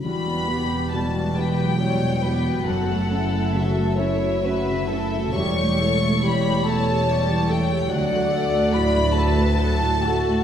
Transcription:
<<
  \new Staff \with { instrumentName = "Violin section" } { \time 6/8 \key e \dorian \tempo 4. = 46 b''4 a''8 g''4. | fis''4 e''8 e''4. | cis'''4 b''8 a''4 g''8 | fis''4 b''8 a''4. | }
  \new Staff \with { instrumentName = "Violin section" } { \time 6/8 \key e \dorian r4. b'8 cis''8 b'8 | a'4. cis''8 b'8 a'8 | cis''2. | d''4. b'8 a'8 fis'8 | }
  \new Staff \with { instrumentName = "Viola section" } { \time 6/8 \key e \dorian <g fis'>8 <b g'>8 <g fis'>8 <b g'>8 <fis g>8 <b g'>8 | <fis fis'>8 <a e'>8 <fis fis'>8 <a e'>8 <fis fis'>8 <a e'>8 | <g g'>8 <a a'>8 <g g'>8 <a a'>8 <g g'>8 <a a'>8 | <fis fis'>8 <a a'>8 <fis fis'>8 <a a'>8 <fis fis'>8 <a a'>8 | }
  \new Staff \with { instrumentName = "Grand piano" } { \time 6/8 \key e \dorian e,16 b16 e'16 b16 b,16 b16 e'16 fis16 e'16 b,16 e'16 fis'16 | fis,16 a16 cis'16 a16 cis16 a16 cis'16 fis'16 cis'16 cis16 cis'16 fis'16 | e,16 a16 e'16 a16 e16 a16 e'16 g'16 e'16 e16 e'16 g'16 | d,16 a16 fis'16 a16 a,16 a16 fis'16 a16 fis'16 a,16 fis'16 a16 | }
  \new Staff \with { instrumentName = "Cello section" } { \clef bass \time 6/8 \key e \dorian e,2. | fis,2. | e,2. | d,2. | }
  \new Staff \with { instrumentName = "Double bass section" } { \clef bass \time 6/8 \key e \dorian e,,2. | fis,,2. | e,,2. | d,2. | }
>>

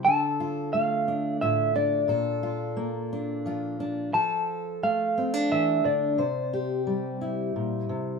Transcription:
<<
  \new Staff \with { instrumentName = "Clean electric guitar" } { \time 3/4 \key d \minor \tempo 4 = 88 a''4 f''4 e''8 d''8~ | d''4. r4. | a''4 f''4 e''8 d''8~ | d''4. r4. | }
  \new Staff \with { instrumentName = "Steel-string acoustic guitar" } { \time 3/4 \key d \minor << { a'8 f'4 d'8 f'8 d'8 | a'8 f'4 d'8 f'8 d'8 | a'4. c'16 d'4~ d'16 | c''8 g'4 e'4. | } \\ { d4 a4 a,4 | bes,4 bes4 f4 | f4 a4 e8 d8 | c4 g4 bes,8 c8 | } >> }
>>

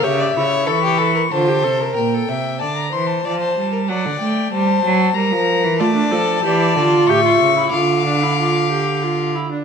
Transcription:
<<
  \new Staff \with { instrumentName = "Violin" } { \time 3/4 \key c \dorian \tempo 4 = 93 e''4 cis'''4 a''4 | g''4 a''16 bes''16 c'''16 a''4~ a''16 | fis''8 g''8 a''4 bes''4 | \key d \minor a''2 cis'''4 |
d'''2~ d'''8 r8 | }
  \new Staff \with { instrumentName = "Violin" } { \time 3/4 \key c \dorian cis''16 d''16 cis''8 a'16 g'16 a'16 bes'16 c''4 | bes'16 a'16 e''8 d''8 c''8 d''16 c''8 bes'16 | d''4 c''4 bes'4 | \key d \minor d''4 d''4 e''4 |
f''2~ f''8 r8 | }
  \new Staff \with { instrumentName = "Viola" } { \time 3/4 \key c \dorian g'8 e'4. f'16 g'16 a'16 bes'16 | r2. | r2. | \key d \minor f'16 d'16 a'8 g'8 f'8 g'16 f'8 e'16 |
f'8 d'16 e'16 f'8 g'8 f'8 e'16 d'16 | }
  \new Staff \with { instrumentName = "Cello" } { \clef bass \time 3/4 \key c \dorian cis8 cis8 e4 d8 c8 | bes,8 c8 d8 e8 f8 g8 | fis16 d16 a8 g8 fis8 g16 f8 e16 | \key d \minor a8 f8 e8 d8 a,8 cis8 |
d2~ d8 r8 | }
>>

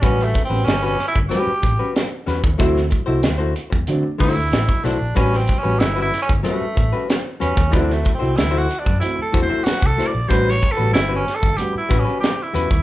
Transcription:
<<
  \new Staff \with { instrumentName = "Hollow-body jazz guitar" } { \time 4/4 \key a \mixolydian \tempo 4 = 94 <g cis' fis' b'>16 r8 <g cis' fis' b'>16 r16 <g cis' fis' b'>16 r8 <g cis' fis' b'>16 r8 <g cis' fis' b'>16 r8 <g cis' fis' b'>16 r16 | <a e' fis' c''>16 r8 <a e' fis' c''>16 r16 <a e' fis' c''>16 r4 <a e' fis' c''>16 r8. <a e' fis' c''>16 r16 | <g cis' fis' b'>16 r8 <g cis' fis' b'>16 r16 <g cis' fis' b'>16 r8 <g cis' fis' b'>16 r8 <g cis' fis' b'>16 r8 <g cis' fis' b'>16 r16 | <a e' fis' c''>16 r8 <a e' fis' c''>16 r16 <a e' fis' c''>16 r4 <a e' fis' c''>16 <a e' fis' c''>16 r8 <a e' fis' c''>16 r16 |
<g cis' fis' b'>16 r8 <g cis' fis' b'>16 r16 <g cis' fis' b'>16 r4 <g cis' fis' b'>16 <g cis' fis' b'>16 r8 <g cis' fis' b'>16 r16 | }
  \new Staff \with { instrumentName = "Tenor saxophone" } { \time 4/4 \key a \mixolydian \tuplet 3/2 { cis'8 a8 c'8 cis'8 cis'8 e'8 } g'4 r4 | r2 r8 e'4 d'8 | \tuplet 3/2 { cis'8 c'8 cis'8 e'8 e'8 cis'8 } a4 r8 cis'8 | \tuplet 3/2 { d'8 a8 c'8 e'8 fis'8 d'8 e'8 a'8 c''8 fis'8 a'8 d''8 } |
\tuplet 3/2 { c''8 cis''8 a'8 e'8 cis'8 a'8 g'8 e'8 cis'8 g'8 e'4 } | }
  \new Staff \with { instrumentName = "Upright piano" } { \time 4/4 \key a \mixolydian <g b cis' fis'>16 r8 <g b cis' fis'>16 r16 <cis' fis'>16 r8 <g b cis' fis'>16 r16 <cis' a'>16 <cis' fis'>16 r4 | <fis a c' e'>16 r8 <fis a c' e'>16 r16 <c' e'>16 r8 <fis a c' d'>16 r16 <c' d'>16 <c' e'>16 r4 | <g b cis' fis'>16 r8 <g b cis' fis'>16 r16 fis'16 r8 <g b cis' a'>16 r16 <cis' a'>16 <cis' g'>16 r4 | <fis a c' e'>16 r8 <fis a c' e'>16 r16 <c' d'>16 r8 <fis a c' e'>16 r16 <c' d'>16 <c' e'>16 r4 |
<g b cis' fis'>16 r8 <g b cis' fis'>16 r16 <cis' fis'>16 r8 <g b cis' fis'>16 r16 <cis' fis'>16 r4 r16 | }
  \new Staff \with { instrumentName = "Fingered electric bass" } { \clef bass \time 4/4 \key a \mixolydian a,,8 r16 a,,16 g,,8 r16 g,,16 r8 a,,16 r8. e,16 dis,16 | d,8 r16 c,16 d,8 r16 e,16 d16 r16 d16 d,16 a,,16 r16 b,,16 bes,,16 | a,,8 r16 a,,16 g,,8 r16 g,,16 r8 a,,16 r8. e,16 dis,16 | d,8 r16 c,16 d,8 r16 fis,16 r8 e,16 r8 c,16 r16 bes,,16 |
a,,8 r16 a,,16 g,,8 r16 g,,16 r8 a,,16 r8. e,16 dis,16 | }
  \new DrumStaff \with { instrumentName = "Drums" } \drummode { \time 4/4 <hh bd>16 sn16 <hh bd>8 <hh sn>8 <hh sn>16 bd16 hh8 <hh bd>8 <hh sn>8 <hh sn>16 bd16 | <hh bd>16 sn16 <hh bd>8 <hh sn>8 hh16 bd16 hh8 <hho bd>8 <hh sn>16 bd16 <hh sn>8 | <hh bd>16 sn16 <hh bd>8 <hh sn>8 <hh sn>16 bd16 hh8 <hh bd>8 <hh sn>8 hh16 bd16 | <hh bd>16 sn16 <hh bd>8 <hh sn>8 hh16 bd16 hh8 <hh bd>8 <hh sn>16 bd16 <hh sn>8 |
<hh bd>16 sn16 <hh bd>8 <hh sn>8 <hh sn>16 bd16 hh8 <hh bd>8 <hh sn>8 hh16 bd16 | }
>>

